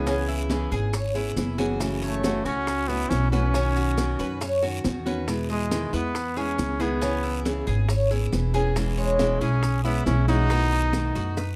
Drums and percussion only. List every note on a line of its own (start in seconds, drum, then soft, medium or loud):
0.07 high bongo medium
0.07 high conga soft
0.07 long guiro medium
0.07 maracas medium
0.28 high conga soft
0.28 maracas soft
0.50 high bongo medium
0.50 high conga medium
0.50 short guiro medium
0.50 maracas medium
0.71 high bongo soft
0.71 high conga soft
0.71 short guiro medium
0.71 maracas soft
0.93 high bongo medium
0.93 high conga soft
0.93 long guiro medium
0.93 maracas medium
1.15 high bongo soft
1.15 high conga soft
1.15 maracas soft
1.37 high bongo soft
1.37 low bongo medium
1.37 high conga medium
1.37 short guiro medium
1.37 maracas medium
1.58 high bongo soft
1.58 high conga medium
1.58 short guiro medium
1.58 maracas soft
1.80 high bongo medium
1.80 high conga soft
1.80 long guiro medium
1.80 maracas medium
2.02 high conga soft
2.02 maracas soft
2.24 high bongo medium
2.24 high conga medium
2.24 short guiro medium
2.24 maracas medium
2.45 high bongo soft
2.45 high conga soft
2.45 short guiro medium
2.45 maracas soft
2.67 high bongo medium
2.67 high conga soft
2.67 long guiro medium
2.67 maracas medium
2.89 high bongo soft
2.89 high conga soft
2.89 maracas soft
3.10 high bongo soft
3.10 low bongo medium
3.10 high conga medium
3.10 short guiro medium
3.10 maracas medium
3.32 high bongo soft
3.32 high conga medium
3.32 short guiro medium
3.32 maracas soft
3.54 high bongo medium
3.54 long guiro medium
3.54 maracas medium
3.76 high conga soft
3.76 maracas soft
3.97 high bongo medium
3.97 high conga medium
3.97 short guiro medium
3.97 maracas medium
4.19 high bongo soft
4.19 high conga soft
4.19 short guiro medium
4.19 maracas soft
4.41 high bongo medium
4.41 high conga soft
4.41 long guiro medium
4.41 maracas medium
4.63 high bongo soft
4.63 high conga soft
4.63 maracas soft
4.84 high bongo soft
4.84 low bongo medium
4.84 high conga medium
4.84 short guiro medium
4.84 maracas medium
5.06 high bongo soft
5.06 high conga medium
5.06 short guiro medium
5.06 maracas soft
5.28 high bongo medium
5.28 high conga soft
5.28 long guiro medium
5.28 maracas medium
5.50 high conga soft
5.50 maracas soft
5.71 high bongo medium
5.71 high conga medium
5.71 short guiro medium
5.71 maracas medium
5.93 high bongo soft
5.93 high conga soft
5.93 short guiro medium
5.93 maracas soft
6.15 high bongo medium
6.15 high conga soft
6.15 long guiro medium
6.15 maracas medium
6.37 high bongo soft
6.37 high conga soft
6.37 maracas soft
6.58 high bongo soft
6.58 low bongo medium
6.58 high conga medium
6.58 short guiro medium
6.58 maracas medium
6.80 high bongo soft
6.80 short guiro medium
6.80 maracas soft
7.02 high bongo medium
7.02 high conga soft
7.02 long guiro medium
7.02 maracas medium
7.24 high conga soft
7.24 maracas soft
7.45 high bongo medium
7.45 high conga medium
7.45 short guiro medium
7.45 maracas medium
7.67 high bongo soft
7.67 high conga soft
7.67 short guiro medium
7.67 maracas soft
7.89 high bongo medium
7.89 high conga soft
7.89 long guiro medium
7.89 maracas medium
8.11 high bongo soft
8.11 high conga soft
8.11 maracas soft
8.32 high bongo soft
8.32 low bongo medium
8.32 high conga medium
8.32 short guiro medium
8.32 maracas medium
8.54 high bongo soft
8.54 short guiro medium
8.54 maracas soft
8.76 high bongo medium
8.76 high conga soft
8.76 long guiro medium
8.76 maracas medium
8.97 high conga soft
8.97 maracas soft
9.19 high bongo medium
9.19 high conga medium
9.19 short guiro medium
9.19 maracas medium
9.41 high bongo soft
9.41 high conga soft
9.41 short guiro medium
9.41 maracas soft
9.63 high bongo medium
9.63 high conga soft
9.63 long guiro medium
9.63 maracas medium
9.84 high bongo soft
9.84 high conga soft
9.84 maracas soft
10.06 high bongo soft
10.06 low bongo medium
10.06 high conga medium
10.06 short guiro medium
10.06 maracas medium
10.28 high bongo soft
10.28 high conga medium
10.28 short guiro medium
10.28 maracas soft
10.50 high bongo medium
10.50 high conga soft
10.50 long guiro medium
10.50 maracas medium
10.72 high conga soft
10.72 maracas soft
10.93 high bongo medium
10.93 high conga medium
10.93 short guiro medium
10.93 maracas medium
11.16 high bongo soft
11.16 high conga soft
11.16 short guiro medium
11.16 maracas soft
11.37 high bongo medium
11.37 high conga soft
11.37 long guiro medium
11.37 maracas medium